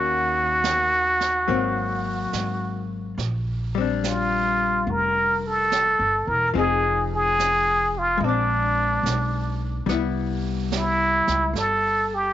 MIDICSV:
0, 0, Header, 1, 5, 480
1, 0, Start_track
1, 0, Tempo, 842697
1, 1802, Time_signature, 4, 2, 24, 8
1, 3723, Tempo, 832178
1, 7066, End_track
2, 0, Start_track
2, 0, Title_t, "Muted trumpet"
2, 0, Program_c, 0, 59
2, 0, Note_on_c, 0, 66, 70
2, 1641, Note_off_c, 0, 66, 0
2, 2309, Note_on_c, 0, 65, 65
2, 2793, Note_on_c, 0, 70, 75
2, 2802, Note_off_c, 0, 65, 0
2, 3115, Note_on_c, 0, 69, 78
2, 3124, Note_off_c, 0, 70, 0
2, 3576, Note_on_c, 0, 70, 66
2, 3585, Note_off_c, 0, 69, 0
2, 3726, Note_off_c, 0, 70, 0
2, 3734, Note_on_c, 0, 68, 70
2, 4035, Note_off_c, 0, 68, 0
2, 4070, Note_on_c, 0, 68, 85
2, 4557, Note_on_c, 0, 65, 67
2, 4566, Note_off_c, 0, 68, 0
2, 4708, Note_on_c, 0, 62, 70
2, 4716, Note_off_c, 0, 65, 0
2, 5500, Note_off_c, 0, 62, 0
2, 6155, Note_on_c, 0, 64, 74
2, 6626, Note_on_c, 0, 69, 70
2, 6635, Note_off_c, 0, 64, 0
2, 6957, Note_on_c, 0, 67, 60
2, 6966, Note_off_c, 0, 69, 0
2, 7066, Note_off_c, 0, 67, 0
2, 7066, End_track
3, 0, Start_track
3, 0, Title_t, "Hollow-body jazz guitar"
3, 0, Program_c, 1, 26
3, 0, Note_on_c, 1, 51, 35
3, 0, Note_on_c, 1, 58, 40
3, 0, Note_on_c, 1, 61, 41
3, 0, Note_on_c, 1, 66, 37
3, 837, Note_off_c, 1, 58, 0
3, 838, Note_off_c, 1, 51, 0
3, 841, Note_on_c, 1, 54, 35
3, 843, Note_off_c, 1, 61, 0
3, 844, Note_off_c, 1, 66, 0
3, 844, Note_on_c, 1, 58, 42
3, 848, Note_on_c, 1, 60, 43
3, 1804, Note_off_c, 1, 54, 0
3, 1805, Note_off_c, 1, 58, 0
3, 1807, Note_off_c, 1, 60, 0
3, 2135, Note_on_c, 1, 55, 43
3, 2151, Note_on_c, 1, 60, 41
3, 2169, Note_on_c, 1, 62, 47
3, 3721, Note_off_c, 1, 55, 0
3, 3723, Note_on_c, 1, 53, 33
3, 3726, Note_off_c, 1, 60, 0
3, 3733, Note_on_c, 1, 60, 40
3, 3742, Note_off_c, 1, 62, 0
3, 3745, Note_on_c, 1, 63, 41
3, 3754, Note_on_c, 1, 68, 44
3, 4666, Note_off_c, 1, 53, 0
3, 4668, Note_on_c, 1, 56, 36
3, 4688, Note_off_c, 1, 60, 0
3, 4694, Note_off_c, 1, 63, 0
3, 4699, Note_off_c, 1, 68, 0
3, 4706, Note_on_c, 1, 60, 36
3, 4731, Note_on_c, 1, 62, 41
3, 5634, Note_off_c, 1, 56, 0
3, 5641, Note_on_c, 1, 55, 43
3, 5653, Note_off_c, 1, 60, 0
3, 5658, Note_on_c, 1, 59, 47
3, 5665, Note_off_c, 1, 62, 0
3, 5672, Note_on_c, 1, 64, 44
3, 7066, Note_off_c, 1, 55, 0
3, 7066, Note_off_c, 1, 59, 0
3, 7066, Note_off_c, 1, 64, 0
3, 7066, End_track
4, 0, Start_track
4, 0, Title_t, "Upright bass"
4, 0, Program_c, 2, 32
4, 0, Note_on_c, 2, 39, 60
4, 819, Note_off_c, 2, 39, 0
4, 845, Note_on_c, 2, 32, 56
4, 1299, Note_off_c, 2, 32, 0
4, 1330, Note_on_c, 2, 32, 56
4, 1785, Note_off_c, 2, 32, 0
4, 1809, Note_on_c, 2, 34, 59
4, 2746, Note_off_c, 2, 34, 0
4, 2773, Note_on_c, 2, 29, 60
4, 3386, Note_off_c, 2, 29, 0
4, 3414, Note_on_c, 2, 31, 47
4, 3558, Note_off_c, 2, 31, 0
4, 3573, Note_on_c, 2, 28, 48
4, 3717, Note_off_c, 2, 28, 0
4, 3731, Note_on_c, 2, 29, 67
4, 4665, Note_off_c, 2, 29, 0
4, 4685, Note_on_c, 2, 34, 64
4, 5139, Note_off_c, 2, 34, 0
4, 5163, Note_on_c, 2, 35, 57
4, 5619, Note_off_c, 2, 35, 0
4, 5642, Note_on_c, 2, 36, 67
4, 6428, Note_off_c, 2, 36, 0
4, 6459, Note_on_c, 2, 37, 53
4, 6598, Note_off_c, 2, 37, 0
4, 6606, Note_on_c, 2, 31, 57
4, 7066, Note_off_c, 2, 31, 0
4, 7066, End_track
5, 0, Start_track
5, 0, Title_t, "Drums"
5, 363, Note_on_c, 9, 38, 32
5, 363, Note_on_c, 9, 44, 39
5, 420, Note_off_c, 9, 38, 0
5, 420, Note_off_c, 9, 44, 0
5, 686, Note_on_c, 9, 38, 21
5, 743, Note_off_c, 9, 38, 0
5, 839, Note_on_c, 9, 25, 26
5, 1327, Note_on_c, 9, 38, 29
5, 1327, Note_on_c, 9, 44, 32
5, 1384, Note_off_c, 9, 38, 0
5, 1384, Note_off_c, 9, 44, 0
5, 1813, Note_off_c, 9, 25, 0
5, 1813, Note_on_c, 9, 25, 34
5, 1813, Note_on_c, 9, 38, 22
5, 1870, Note_off_c, 9, 38, 0
5, 2299, Note_on_c, 9, 38, 30
5, 2299, Note_on_c, 9, 44, 47
5, 2356, Note_off_c, 9, 38, 0
5, 2356, Note_off_c, 9, 44, 0
5, 2776, Note_off_c, 9, 25, 0
5, 2776, Note_on_c, 9, 25, 24
5, 3257, Note_on_c, 9, 38, 31
5, 3257, Note_on_c, 9, 44, 41
5, 3314, Note_off_c, 9, 38, 0
5, 3314, Note_off_c, 9, 44, 0
5, 3732, Note_off_c, 9, 25, 0
5, 3732, Note_on_c, 9, 25, 26
5, 4218, Note_on_c, 9, 38, 28
5, 4218, Note_on_c, 9, 44, 36
5, 4276, Note_off_c, 9, 38, 0
5, 4276, Note_off_c, 9, 44, 0
5, 4696, Note_off_c, 9, 25, 0
5, 4696, Note_on_c, 9, 25, 29
5, 5177, Note_on_c, 9, 38, 32
5, 5177, Note_on_c, 9, 44, 37
5, 5235, Note_off_c, 9, 38, 0
5, 5235, Note_off_c, 9, 44, 0
5, 5656, Note_off_c, 9, 25, 0
5, 5656, Note_on_c, 9, 25, 33
5, 5656, Note_on_c, 9, 38, 26
5, 5714, Note_off_c, 9, 38, 0
5, 6135, Note_on_c, 9, 38, 35
5, 6135, Note_on_c, 9, 44, 39
5, 6193, Note_off_c, 9, 38, 0
5, 6193, Note_off_c, 9, 44, 0
5, 6454, Note_on_c, 9, 38, 21
5, 6512, Note_off_c, 9, 38, 0
5, 6617, Note_off_c, 9, 25, 0
5, 6617, Note_on_c, 9, 25, 28
5, 6617, Note_on_c, 9, 38, 20
5, 6674, Note_off_c, 9, 38, 0
5, 7066, Note_off_c, 9, 25, 0
5, 7066, End_track
0, 0, End_of_file